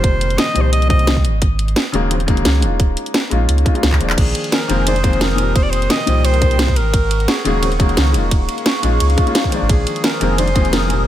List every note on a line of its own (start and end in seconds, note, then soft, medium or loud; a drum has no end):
0.00 0.37 F1 medium
0.00 0.52 A#2 medium
0.00 0.53 C3 medium
0.00 0.54 D#3 medium
0.00 0.55 F3 medium
0.00 0.55 G3 medium
0.00 0.40 C5 loud
0.00 kick loud
0.00 closed hi-hat medium
0.21 closed hi-hat medium
0.30 closed hi-hat soft
0.38 0.63 D#5 loud
0.38 snare loud
0.38 closed hi-hat medium
0.54 1.26 C2 medium
0.54 0.87 A#2 medium
0.54 0.88 C3 medium
0.54 0.89 D#3 medium
0.54 0.89 F3 medium
0.54 0.89 G3 loud
0.54 closed hi-hat medium
0.61 0.72 C5 loud
0.72 0.89 D#5 loud
0.72 closed hi-hat medium
0.82 closed hi-hat soft
0.89 1.23 A#2 medium
0.89 1.23 C3 medium
0.89 1.24 D#3 medium
0.89 1.24 F3 medium
0.89 1.25 G3 medium
0.89 1.22 D#5 loud
0.89 kick loud
0.89 closed hi-hat medium
0.99 closed hi-hat soft
1.07 snare loud
1.07 closed hi-hat medium
1.17 kick medium
1.24 1.75 G#1 medium
1.24 closed hi-hat medium
1.42 kick loud
1.42 closed hi-hat medium
1.59 closed hi-hat medium
1.68 closed hi-hat soft
1.76 snare loud
1.76 closed hi-hat medium
1.92 2.44 D#1 medium
1.92 2.08 C#3 loud
1.92 2.09 D#3 medium
1.92 2.09 F#3 medium
1.92 2.09 G#3 medium
1.92 2.10 A#3 loud
1.92 closed hi-hat medium
2.09 2.15 C#3 medium
2.09 2.15 D#3 medium
2.09 2.16 F#3 medium
2.09 2.16 G#3 medium
2.09 2.17 C4 loud
2.09 closed hi-hat medium
2.20 closed hi-hat soft
2.26 2.60 C#3 loud
2.26 2.60 D#3 medium
2.26 2.61 F#3 medium
2.26 2.58 G#3 medium
2.26 2.60 A#3 loud
2.26 kick loud
2.26 closed hi-hat medium
2.37 closed hi-hat soft
2.45 2.64 C#2 loud
2.45 snare loud
2.45 closed hi-hat medium
2.60 2.96 D#1 medium
2.60 3.28 G#3 medium
2.60 3.29 A#3 medium
2.60 3.30 C#4 medium
2.60 closed hi-hat medium
2.64 3.30 D#4 medium
2.64 3.31 F4 medium
2.80 kick loud
2.80 closed hi-hat medium
2.97 closed hi-hat medium
3.06 closed hi-hat soft
3.14 snare loud
3.14 closed hi-hat loud
3.30 3.47 A#1 medium
3.30 3.63 G#3 medium
3.30 3.64 A#3 medium
3.30 3.64 C#4 medium
3.30 3.65 D#4 medium
3.30 3.65 F4 loud
3.30 closed hi-hat medium
3.49 3.64 C#2 loud
3.49 closed hi-hat loud
3.58 closed hi-hat soft
3.64 3.70 G#3 medium
3.64 3.71 A#3 medium
3.64 3.71 C#4 medium
3.64 3.71 D#4 medium
3.64 3.72 F4 medium
3.64 kick loud
3.64 closed hi-hat medium
3.74 3.98 G#3 medium
3.74 3.98 A#3 medium
3.74 3.99 C#4 medium
3.74 3.99 D#4 medium
3.74 3.99 F4 medium
3.74 closed hi-hat soft
3.83 3.99 C#2 medium
3.83 snare loud
3.83 closed hi-hat loud
3.92 kick medium
3.92 clap medium
3.98 4.16 D#1 medium
3.98 4.66 D#3 medium
3.98 4.67 F3 medium
3.98 4.68 G#3 medium
3.98 closed hi-hat medium
4.02 4.68 A#3 medium
4.02 4.69 D4 medium
4.10 clap loud
4.17 4.33 A#1 loud
4.17 4.54 G#4 medium
4.17 5.54 C5 medium
4.17 5.54 G#5 medium
4.17 6.74 D#6 loud
4.17 kick loud
4.17 closed hi-hat loud
4.17 crash medium
4.17 ride medium
4.35 closed hi-hat medium
4.35 ride medium
4.44 closed hi-hat soft
4.52 4.87 A#4 medium
4.52 snare loud
4.52 closed hi-hat loud
4.52 ride medium
4.68 5.54 F1 medium
4.68 4.84 D#3 loud
4.68 4.85 F3 medium
4.68 4.85 G#3 medium
4.68 4.85 A#3 medium
4.68 4.86 C4 loud
4.68 closed hi-hat medium
4.68 ride medium
4.85 4.91 D#3 medium
4.85 4.91 F3 medium
4.85 4.92 G#3 medium
4.85 4.92 A#3 medium
4.85 4.93 D4 loud
4.85 5.23 C5 loud
4.85 closed hi-hat loud
4.85 ride medium
4.96 closed hi-hat soft
5.03 5.36 D#3 loud
5.03 5.36 F3 medium
5.03 5.37 G#3 medium
5.03 5.37 A#3 medium
5.03 5.37 C4 loud
5.03 kick loud
5.03 closed hi-hat medium
5.03 ride medium
5.13 closed hi-hat soft
5.21 5.57 A#4 loud
5.21 snare loud
5.21 closed hi-hat loud
5.21 ride medium
5.36 6.04 A#2 medium
5.36 6.05 C3 medium
5.36 6.06 D#3 medium
5.36 closed hi-hat medium
5.36 ride medium
5.40 6.06 F3 medium
5.40 6.07 G3 medium
5.56 5.89 F1 medium
5.56 8.12 A#4 medium
5.56 5.65 C5 loud
5.56 6.75 G5 medium
5.56 kick loud
5.56 closed hi-hat loud
5.56 ride medium
5.63 5.72 D5 medium
5.70 5.92 C5 loud
5.70 closed hi-hat medium
5.70 ride medium
5.82 closed hi-hat soft
5.90 6.26 D#5 loud
5.90 snare loud
5.90 closed hi-hat loud
5.90 ride medium
6.06 6.78 C2 medium
6.06 6.39 A#2 medium
6.06 6.40 C3 medium
6.06 6.40 D#3 medium
6.06 6.41 F3 medium
6.06 6.41 G3 loud
6.06 closed hi-hat medium
6.06 ride medium
6.25 6.78 C5 loud
6.25 closed hi-hat loud
6.25 ride medium
6.34 closed hi-hat soft
6.41 6.75 A#2 medium
6.41 6.75 C3 medium
6.41 6.75 D#3 medium
6.41 6.76 F3 medium
6.41 6.76 G3 medium
6.41 kick loud
6.41 closed hi-hat medium
6.41 ride medium
6.51 closed hi-hat soft
6.59 snare loud
6.59 closed hi-hat loud
6.59 ride medium
6.68 kick medium
6.76 7.27 G#1 medium
6.76 7.30 A#4 loud
6.76 8.13 F#5 medium
6.76 8.13 C#6 loud
6.76 closed hi-hat medium
6.76 ride medium
6.94 kick loud
6.94 closed hi-hat loud
6.94 ride medium
7.11 closed hi-hat medium
7.11 ride medium
7.20 closed hi-hat soft
7.28 7.45 G#4 medium
7.28 snare loud
7.28 closed hi-hat loud
7.28 ride medium
7.44 7.96 D#1 medium
7.44 7.60 C#3 loud
7.44 7.60 D#3 medium
7.44 7.61 F#3 medium
7.44 7.61 G#3 medium
7.44 7.62 A#3 loud
7.44 7.78 G#4 medium
7.44 closed hi-hat medium
7.44 ride medium
7.61 7.67 C#3 medium
7.61 7.67 D#3 medium
7.61 7.68 F#3 medium
7.61 7.68 G#3 medium
7.61 7.68 C4 loud
7.61 closed hi-hat medium
7.61 ride medium
7.72 closed hi-hat soft
7.79 8.12 C#3 loud
7.79 8.12 D#3 medium
7.79 8.13 F#3 medium
7.79 8.10 G#3 medium
7.79 8.11 A#3 loud
7.79 kick loud
7.79 closed hi-hat medium
7.79 ride medium
7.89 closed hi-hat soft
7.97 8.16 C#2 loud
7.97 snare loud
7.97 closed hi-hat loud
7.97 ride medium
8.11 8.48 D#1 medium
8.11 8.80 G#3 medium
8.11 8.81 A#3 medium
8.11 8.81 C#4 medium
8.11 9.68 G#4 medium
8.11 9.68 F5 medium
8.11 9.68 C#6 loud
8.11 closed hi-hat medium
8.11 ride medium
8.16 8.82 D#4 medium
8.16 8.83 F4 medium
8.31 kick loud
8.31 closed hi-hat medium
8.31 ride medium
8.49 closed hi-hat medium
8.49 ride medium
8.58 closed hi-hat soft
8.66 snare loud
8.66 closed hi-hat medium
8.66 ride medium
8.82 8.99 A#1 medium
8.82 9.15 G#3 medium
8.82 9.16 A#3 medium
8.82 9.16 C#4 medium
8.82 9.17 D#4 medium
8.82 9.17 F4 loud
8.82 closed hi-hat medium
8.82 ride medium
9.00 9.16 C#2 loud
9.00 closed hi-hat medium
9.00 ride medium
9.10 closed hi-hat soft
9.16 9.22 G#3 medium
9.16 9.22 A#3 medium
9.16 9.23 C#4 medium
9.16 9.23 D#4 medium
9.16 9.24 F4 medium
9.16 kick loud
9.16 closed hi-hat medium
9.16 ride soft
9.26 9.50 G#3 medium
9.26 9.50 A#3 medium
9.26 9.50 C#4 medium
9.26 9.51 D#4 medium
9.26 9.51 F4 medium
9.26 closed hi-hat soft
9.35 snare loud
9.35 closed hi-hat medium
9.35 ride medium
9.44 kick medium
9.49 10.18 D#3 medium
9.49 10.19 F3 medium
9.49 10.19 G#3 medium
9.49 closed hi-hat medium
9.49 ride medium
9.54 10.20 A#3 medium
9.54 10.21 D4 medium
9.62 9.69 G#1 medium
9.69 9.85 A#1 loud
9.69 10.01 G#4 medium
9.69 11.06 C5 medium
9.69 11.06 G#5 medium
9.69 11.07 D#6 loud
9.69 kick loud
9.69 closed hi-hat medium
9.69 ride medium
9.87 closed hi-hat medium
9.87 ride medium
9.96 closed hi-hat soft
10.04 10.40 A#4 medium
10.04 snare loud
10.04 closed hi-hat medium
10.04 ride medium
10.20 11.06 F1 medium
10.20 10.36 D#3 loud
10.20 10.36 F3 medium
10.20 10.37 G#3 medium
10.20 10.37 A#3 medium
10.20 10.37 C4 loud
10.20 closed hi-hat medium
10.20 ride medium
10.37 10.43 D#3 medium
10.37 10.43 F3 medium
10.37 10.43 G#3 medium
10.37 10.44 A#3 medium
10.37 10.44 D4 loud
10.37 10.75 C5 loud
10.37 closed hi-hat medium
10.37 ride medium
10.48 closed hi-hat soft
10.54 10.87 D#3 medium
10.54 10.88 F3 medium
10.54 10.88 G#3 medium
10.54 10.89 A#3 medium
10.54 10.89 C4 loud
10.54 kick loud
10.54 closed hi-hat medium
10.54 ride medium
10.65 closed hi-hat soft
10.73 11.07 A#4 loud
10.73 snare loud
10.73 closed hi-hat medium
10.73 ride medium
10.87 11.07 A#2 medium
10.87 11.07 C3 medium
10.87 11.07 D#3 medium
10.87 closed hi-hat medium
10.87 ride medium
10.92 11.07 F3 medium
10.92 11.07 G3 medium